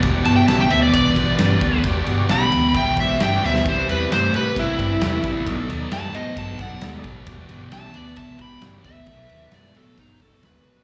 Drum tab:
RD |x-x-x-x-x-x-x-x-|x-x-x-x-x-x-x---|x-x-x-x-x-x-x-x-|x-x-x-x-x-x-x-x-|
SD |----o-------o---|----o-------o-oo|----o-------o---|----o-------o---|
T1 |----------------|----------------|----------------|----------------|
FT |----------------|----------------|----------------|----------------|
BD |o-------o-o---o-|o-------o-o-----|o-------o-o---o-|o-------o-o---o-|

RD |x-x-x-x-x-x-x-x-|x-x-x-x-x-x-x---|
SD |----o-------o---|----o------oo---|
T1 |----------------|--------------o-|
FT |----------------|---------------o|
BD |o-------o-o---o-|o-------o-o-----|